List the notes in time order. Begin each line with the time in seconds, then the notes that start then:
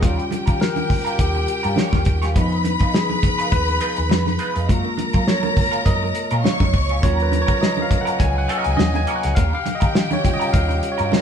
0.02 D#2 G3 C#4 F4 G4 A#4 G5, kick, closed hi-hat, muted conga, low conga
0.17 muted clean electric guitar stroke, closed hi-hat
0.31 muted clean electric guitar stroke, muted fingered electric bass stroke, closed hi-hat, high conga
0.46 D#3 G3 C#4 F4 A#4, kick, closed hi-hat
0.60 A#4, muted clean electric guitar stroke, snare, muted conga
0.75 muted clean electric guitar stroke, closed hi-hat, high conga
0.90 kick, open hi-hat, low conga
1.05 G3 C#4 F4 A#4, closed hi-hat
1.19 D#2 G4, muted clean electric guitar stroke, kick, closed hi-hat
1.35 muted clean electric guitar stroke, muted conga
1.48 closed hi-hat
1.63 G2 G3 C#4 F4 A#4, closed hi-hat
1.76 G3 C#4 F4 C#5, snare, muted conga, high conga
1.93 D#2, kick, snare, high conga
2.05 D#2, muted clean electric guitar stroke, kick, closed hi-hat
2.22 G3 C#4 F4 C#5, snare, closed hi-hat
2.34 F2 F3 G#3 B3 D#4 F4 B4 B5, kick, closed hi-hat, low conga
2.51 muted clean electric guitar stroke, closed hi-hat
2.64 muted clean electric guitar stroke, closed hi-hat, high conga
2.79 G#3 D#4 F4 B4, kick, closed hi-hat
2.94 G#4, muted clean electric guitar stroke, snare, muted conga
3.08 muted clean electric guitar stroke, high conga
3.23 kick, closed hi-hat, low conga
3.38 G#3 D#4 F4 B4, closed hi-hat
3.52 D#2 B4, muted clean electric guitar stroke, kick, closed hi-hat
3.68 muted clean electric guitar stroke, closed hi-hat, muted conga
3.80 G#3 D#4 F4 B4, closed hi-hat
3.96 D#2, muted clean electric guitar stroke, closed hi-hat
4.10 F2, muted clean electric guitar stroke, snare, muted conga, high conga
4.25 muted clean electric guitar stroke, snare, high conga
4.39 G#3 D#4 F4 B4, closed hi-hat
4.53 F2 G#3 D#4 F4 B4, closed hi-hat
4.67 F#2 F#3 G#3 A#3 C#4 F4 A#4 A#5, kick, closed hi-hat, muted conga, low conga
4.83 muted clean electric guitar stroke, muted conga
4.97 muted clean electric guitar stroke, muted fingered electric bass stroke, closed hi-hat, high conga
5.13 F#3 C#4 F4 A#4, kick, closed hi-hat
5.26 C#5, muted clean electric guitar stroke, snare
5.43 muted clean electric guitar stroke, muted conga, high conga
5.57 kick, open hi-hat, low conga
5.71 F#3 C#4 F4 A#4, closed hi-hat
5.86 F#2 D#5, muted clean electric guitar stroke, kick, closed hi-hat, muted conga
6.02 muted clean electric guitar stroke, muted conga
6.15 closed hi-hat
6.31 A#2 F#3 C#4 F4 A#4, closed hi-hat
6.44 F#3 C#4 F4 C#5 C#6, snare, high conga
6.60 F#2, kick, snare, muted conga, high conga
6.73 C#2, muted clean electric guitar stroke, kick, open hi-hat
6.89 F#3 C#4 F4 C#5, closed hi-hat
7.02 D#2 F#3 A#3 C#4 F4 F#4 A#4 C#5 A#5, kick, closed hi-hat, low conga
7.18 B4, muted clean electric guitar stroke, closed hi-hat
7.31 muted clean electric guitar stroke, closed hi-hat, high conga
7.42 C#5
7.47 A#3 C#4 F#4 A#4, kick, closed hi-hat
7.60 D#5, muted clean electric guitar stroke, snare, muted conga
7.77 muted clean electric guitar stroke, high conga
7.82 F5
7.91 kick, closed hi-hat, low conga
8.01 F#5
8.05 A#3 C#4 F#4 A#4, closed hi-hat
8.19 C#2 G#4 G#5, muted clean electric guitar stroke, kick, closed hi-hat, muted conga
8.35 F#5, muted clean electric guitar stroke
8.48 A#3 C#4 F#4 A#4, closed hi-hat
8.58 D#5
8.64 C#2, muted clean electric guitar stroke, closed hi-hat
8.77 D#2 D#5, muted clean electric guitar stroke, snare, muted conga, high conga
8.94 G#5, muted clean electric guitar stroke, closed hi-hat, muted conga, high conga
9.07 A#3 C#4 F#4 A#4, closed hi-hat
9.16 F#5
9.23 C#2 A#3 C#4 F#4 A#4, snare, closed hi-hat
9.35 D#2 G3 C#4 F4 G4 A#4 F5 G5, kick, closed hi-hat, muted conga, low conga
9.52 F5, muted clean electric guitar stroke, muted conga
9.65 muted clean electric guitar stroke, muted fingered electric bass stroke, closed hi-hat, high conga
9.75 D#5
9.80 D#3 G3 C#4 F4 A#4, kick, closed hi-hat
9.94 muted clean electric guitar stroke, snare
10.10 C#5, muted clean electric guitar stroke, closed hi-hat, muted conga, high conga
10.24 G3 C#4 F4, kick, closed hi-hat, low conga
10.34 D#5
10.39 G3 C#4 F4 A#4, closed hi-hat
10.53 D#2 F5, muted clean electric guitar stroke, kick, closed hi-hat, muted conga
10.68 muted clean electric guitar stroke, closed hi-hat, muted conga
10.83 closed hi-hat
10.92 C#5
10.98 G2 G3 C#4 F4 A#4, closed hi-hat
11.11 G3 C#4 F4 A#4 C#5 A#5, snare, muted conga, high conga